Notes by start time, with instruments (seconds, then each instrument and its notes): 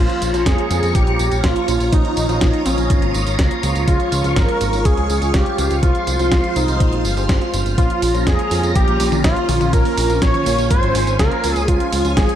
Already playing: grand piano F3 A#3 C#4 F4, analog synth lead F4, string machine F4 C#5 A#5 C#6
0.10 closed hi-hat
0.22 analog synth bass A#1, closed hi-hat, tambourine
0.34 analog synth bass A#1, grand piano F3 A#3 C#4 F4, closed hi-hat, tambourine
0.46 analog synth bass F2, analog synth lead G#4, kick, snare, closed hi-hat, tambourine
0.58 closed hi-hat
0.71 analog synth bass F2, grand piano F3 A#3 C#4 F4, closed hi-hat, tambourine
0.83 analog synth bass F2, closed hi-hat, tambourine
0.95 analog synth bass A#1, analog synth lead G4, kick, closed hi-hat, tambourine
1.07 analog synth bass A#1, grand piano F3 A#3 C#4 F4, closed hi-hat
1.19 analog synth bass A#1, closed hi-hat, tambourine
1.32 analog synth bass A#1, closed hi-hat, tambourine
1.44 analog synth bass A#1, grand piano F3 A#3 C#4 F4, analog synth lead F4, kick, snare, closed hi-hat, tambourine
1.56 closed hi-hat
1.68 analog synth bass A#1, grand piano F3 A#3 C#4 F4, closed hi-hat, tambourine
1.80 analog synth bass A#1, closed hi-hat, tambourine
1.93 analog synth bass A#1, grand piano F3 A#3 C#4 F4, analog synth lead D#4, string machine D#6, kick, closed hi-hat, tambourine
2.05 closed hi-hat
2.17 analog synth bass A#1, closed hi-hat, tambourine
2.29 analog synth bass A#1, grand piano F3 A#3 C#4 F4, closed hi-hat, tambourine
2.41 analog synth bass A#1, kick, snare, closed hi-hat, tambourine
2.53 closed hi-hat
2.66 analog synth bass A#1, grand piano F3 A#3 C#4 F4, analog synth lead C#4, closed hi-hat, tambourine
2.78 analog synth bass A#1, closed hi-hat, tambourine
2.90 analog synth bass G#1, kick, closed hi-hat, tambourine
3.02 analog synth bass G#1, grand piano F3 A#3 C#4 F4, closed hi-hat
3.14 analog synth bass G#1, closed hi-hat, tambourine
3.27 analog synth bass G#1, closed hi-hat, tambourine
3.39 analog synth bass C#2, grand piano F3 A#3 C#4 F4, kick, snare, closed hi-hat, tambourine
3.51 closed hi-hat
3.63 analog synth bass C#2, grand piano F3 A#3 C#4 F4, closed hi-hat, tambourine
3.75 analog synth bass C#2, closed hi-hat, tambourine
3.88 analog synth bass C#2, grand piano F3 G#3 C#4 F4, analog synth lead F4, string machine F5 C#6, kick, closed hi-hat, tambourine
4.00 closed hi-hat
4.12 analog synth bass C#2, closed hi-hat, tambourine
4.24 analog synth bass C#2, grand piano F3 G#3 C#4 F4, closed hi-hat, tambourine
4.36 analog synth bass G#1, analog synth lead A#4, kick, snare, closed hi-hat, tambourine
4.49 closed hi-hat
4.61 analog synth bass G#1, grand piano F3 G#3 C#4 F4, closed hi-hat, tambourine
4.73 analog synth bass G#1, closed hi-hat, tambourine
4.85 analog synth bass C#2, analog synth lead G#4, kick, closed hi-hat, tambourine
4.97 analog synth bass C#2, grand piano F3 G#3 C#4 F4, closed hi-hat
5.10 analog synth bass C#2, closed hi-hat, tambourine
5.22 analog synth bass C#2, closed hi-hat, tambourine
5.34 analog synth bass C#2, grand piano F3 G#3 C#4 F4, analog synth lead G4, kick, snare, closed hi-hat, tambourine
5.46 closed hi-hat
5.58 analog synth bass C#2, grand piano F3 G#3 C#4 F4, closed hi-hat, tambourine
5.71 analog synth bass C#2, closed hi-hat, tambourine
5.83 analog synth bass C2, grand piano F3 G#3 C4 F4, analog synth lead F4, string machine F4 C5 C6, kick, closed hi-hat, tambourine
5.95 closed hi-hat
6.07 analog synth bass C2, closed hi-hat, tambourine
6.19 analog synth bass C2, grand piano F3 G#3 C4 F4, closed hi-hat, tambourine
6.32 analog synth bass C2, kick, snare, closed hi-hat, tambourine
6.44 closed hi-hat
6.56 analog synth bass C2, grand piano F3 G#3 C4 F4, analog synth lead D#4, closed hi-hat, tambourine
6.68 analog synth bass C2, closed hi-hat, tambourine
6.80 analog synth bass A#1, kick, closed hi-hat, tambourine
6.93 analog synth bass A#1, grand piano F3 G#3 C4 F4, closed hi-hat
7.05 analog synth bass G1, closed hi-hat, tambourine
7.17 analog synth bass G1, grand piano F3 G#3 C4 G4, closed hi-hat, tambourine
7.29 analog synth bass G1, kick, snare, closed hi-hat, tambourine
7.41 grand piano F3 G#3 C4 F4, closed hi-hat
7.54 analog synth bass G1, closed hi-hat, tambourine
7.66 analog synth bass G1, closed hi-hat, tambourine
7.78 analog synth bass A#1, grand piano F3 A#3 C#4 F4, string machine C#4 A#5, analog synth lead F4, kick, closed hi-hat, tambourine
7.90 closed hi-hat
8.02 analog synth bass A#1, open hi-hat, tambourine
8.14 analog synth bass A#1, grand piano F3 A#3 C#4 F4, closed hi-hat, tambourine
8.27 analog synth bass F2, analog synth lead G#4, kick, snare, closed hi-hat, tambourine
8.39 closed hi-hat
8.51 analog synth bass F2, grand piano F3 A#3 C#4 F4, open hi-hat, tambourine
8.63 analog synth bass F2, closed hi-hat, tambourine
8.76 analog synth bass A#1, analog synth lead G4, kick, closed hi-hat, tambourine
8.88 analog synth bass A#1, grand piano F3 A#3 C#4 F4, closed hi-hat
9.00 analog synth bass A#1, open hi-hat, tambourine
9.12 analog synth bass A#1, closed hi-hat, high tom, tambourine
9.24 analog synth bass A#1, grand piano F3 A#3 C#4 F4, analog synth lead F4, kick, snare, closed hi-hat, tambourine
9.36 closed hi-hat
9.49 analog synth bass A#1, grand piano F3 A#3 C#4 F4, open hi-hat, high tom, tambourine
9.61 analog synth bass A#1, closed hi-hat, high tom, tambourine
9.73 analog synth bass A#1, grand piano F3 A#3 C#4 F4, analog synth lead A#4, string machine G#5, kick, closed hi-hat, tambourine
9.85 open hi-hat
9.97 analog synth bass A#1, open hi-hat, tambourine
10.10 analog synth bass A#1, grand piano F3 A#3 C#4 F4, closed hi-hat, tambourine
10.22 analog synth bass A#1, analog synth lead C#5, kick, snare, closed hi-hat, tambourine
10.34 closed hi-hat, high tom
10.46 analog synth bass A#1, grand piano F3 A#3 C#4 F4, open hi-hat, tambourine
10.58 analog synth bass A#1, closed hi-hat, tambourine
10.71 analog synth bass G#1, analog synth lead C5, kick, closed hi-hat, tambourine
10.83 analog synth bass G#1, grand piano F3 A#3 C#4 F4, closed hi-hat
10.95 analog synth bass G#1, open hi-hat, tambourine
11.07 analog synth bass G#1, closed hi-hat, tambourine
11.19 analog synth bass C#2, grand piano F3 A#3 C#4 F4, analog synth lead A#4, kick, snare, closed hi-hat, tambourine
11.32 closed hi-hat
11.44 analog synth bass C#2, grand piano F3 A#3 C#4 F4, open hi-hat, tambourine
11.56 analog synth bass C#2, analog synth lead G#4, closed hi-hat, tambourine
11.68 analog synth bass C#2, grand piano F3 G#3 C#4 F4, analog synth lead F4, string machine C#5, kick, closed hi-hat, tambourine
11.80 closed hi-hat
11.93 analog synth bass C#2, open hi-hat, tambourine
12.05 analog synth bass C#2, grand piano F3 G#3 C#4 F4, closed hi-hat, tambourine
12.17 analog synth bass G#1, analog synth lead G#4, kick, snare, closed hi-hat, tambourine
12.29 closed hi-hat